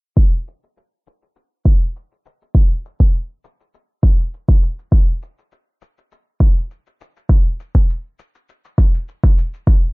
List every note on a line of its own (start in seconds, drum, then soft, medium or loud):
0.17 kick medium
0.17 cabasa soft
0.47 cabasa medium
0.63 cabasa soft
0.77 cabasa soft
1.07 cabasa medium
1.22 cabasa soft
1.36 cabasa soft
1.65 kick medium
1.65 cabasa medium
1.82 cabasa soft
1.96 cabasa soft
2.12 cabasa soft
2.26 cabasa medium
2.42 cabasa soft
2.55 kick loud
2.55 cabasa soft
2.85 cabasa medium
3.00 kick medium
3.00 cabasa soft
3.14 cabasa soft
3.44 cabasa medium
3.60 cabasa soft
3.74 cabasa soft
4.03 kick medium
4.03 cabasa medium
4.20 cabasa soft
4.34 cabasa soft
4.49 kick medium
4.49 cabasa soft
4.63 cabasa medium
4.79 cabasa soft
4.92 kick loud
4.92 cabasa soft
5.22 cabasa medium
5.38 cabasa soft
5.52 cabasa soft
5.82 cabasa medium
5.98 cabasa soft
6.12 cabasa soft
6.40 kick medium
6.40 cabasa medium
6.57 cabasa soft
6.71 cabasa soft
6.87 cabasa soft
7.01 cabasa medium
7.16 cabasa soft
7.29 kick loud
7.29 cabasa soft
7.60 cabasa medium
7.75 kick medium
7.75 cabasa soft
7.90 cabasa soft
8.19 cabasa medium
8.35 cabasa soft
8.49 cabasa soft
8.65 cabasa soft
8.78 kick medium
8.78 cabasa medium
8.94 cabasa soft
9.08 cabasa soft
9.24 kick loud
9.24 cabasa soft
9.38 cabasa medium
9.54 cabasa soft
9.67 kick loud
9.67 cabasa soft